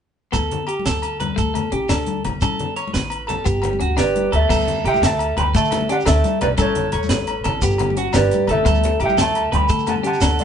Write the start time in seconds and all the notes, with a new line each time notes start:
0.32 D2 B3 A4, kick, closed hi-hat, high conga, low agogo, shekere
0.51 closed hi-hat, low conga
0.67 G4, closed hi-hat, low agogo
0.79 high conga
0.86 D2 A4, snare, closed hi-hat, low conga, shekere
1.02 closed hi-hat, low agogo, shekere
1.20 B4, closed hi-hat, high conga, low conga, low agogo
1.36 D2 A3 A4, kick, closed hi-hat, shekere
1.54 A3, closed hi-hat, low conga, low agogo
1.65 low conga
1.72 A1 C#4 G4, closed hi-hat
1.82 low conga
1.89 D2 D4 A4, snare, closed hi-hat, low conga, low agogo, shekere
2.07 closed hi-hat, high conga
2.25 A1, muted clean electric guitar stroke, closed hi-hat, low conga, low agogo
2.33 low conga
2.41 A1 C#4 A4, kick, closed hi-hat, high conga, low agogo, shekere
2.59 closed hi-hat, low conga
2.76 C#5, closed hi-hat, low agogo
2.88 high conga
2.94 A1 B4, snare, closed hi-hat, low conga, shekere
3.10 closed hi-hat, low agogo
3.27 A4, closed hi-hat, high conga, low conga, low agogo
3.44 G1 B3 G4, kick, closed hi-hat, shekere
3.62 B3, closed hi-hat, low conga, low agogo
3.73 high conga, low conga
3.80 D2 C#4 F#4, closed hi-hat
3.90 low conga
3.97 G1 D4 G4 B4 D5, snare, closed hi-hat, low conga, low agogo, shekere
4.16 closed hi-hat, high conga
4.32 D2 A4 E5, closed hi-hat, low conga, low agogo
4.43 low conga
4.49 D2 B3 A4, kick, crash, high conga, low agogo, shekere
4.61 shekere
4.68 closed hi-hat, low conga
4.78 low conga
4.84 A1 G4 E5 G5, closed hi-hat, low agogo
4.94 high conga, shekere
5.02 D2 A4 E5 A5, snare, closed hi-hat, low conga, shekere
5.19 closed hi-hat, low agogo
5.37 D2 B4 G5 B5, closed hi-hat, high conga, low conga, low agogo
5.54 D3 A3 A4 E5 A5, kick, closed hi-hat, shekere
5.65 shekere
5.71 A3, closed hi-hat, low conga, low agogo, shekere
5.81 high conga
5.89 C#4 G4 D5 F#5, closed hi-hat, low conga, shekere
5.98 low conga, shekere
6.06 D2 D4 A4 E5, snare, closed hi-hat, low conga, low agogo, shekere
6.16 low conga
6.24 closed hi-hat, high conga, shekere
6.41 B1 B4 D5, closed hi-hat, low conga, low agogo
6.58 A1 C#4 A4, kick, closed hi-hat, high conga, low agogo, shekere
6.62 C#5
6.75 closed hi-hat, low conga
6.85 low conga
6.92 E2 C#5, closed hi-hat, low agogo
7.03 high conga, shekere
7.09 A1 B4, snare, closed hi-hat, low conga, shekere
7.27 closed hi-hat, low agogo
7.44 A1 A4, closed hi-hat, low conga, low agogo
7.62 G1 B3 G4, kick, closed hi-hat, shekere
7.70 shekere
7.78 B3, closed hi-hat, low conga, low agogo
7.90 high conga
7.97 C#4 F#4, closed hi-hat, low conga, shekere
8.07 low conga
8.13 G1 D4 G4 B4 D5, snare, closed hi-hat, low agogo, shekere
8.17 low conga
8.26 low conga
8.31 closed hi-hat, high conga, shekere
8.47 A1 A4 E5, closed hi-hat, low conga, low agogo
8.65 D2 B3 A4, kick, closed hi-hat, high conga, low agogo, shekere
8.75 shekere
8.84 closed hi-hat, low conga
8.93 low conga
9.00 A1 G4, closed hi-hat, low conga, low agogo
9.04 E5 G5
9.09 high conga, shekere
9.17 D2 A4 E5, snare, closed hi-hat, low conga, shekere
9.22 A5
9.35 closed hi-hat, low agogo
9.52 D2 B4 G5 B5, closed hi-hat, high conga, low conga, low agogo
9.69 D3 A3 A4, kick, closed hi-hat, shekere
9.79 shekere
9.87 A3 F#5 A5, closed hi-hat, low conga, low agogo, shekere
9.96 high conga
10.03 C#4 G4 F#5 A5, closed hi-hat, low conga, shekere
10.13 low conga, shekere
10.21 D2 D4 A4, snare, closed hi-hat, low conga, low agogo, shekere
10.33 low conga
10.39 D5, closed hi-hat, shekere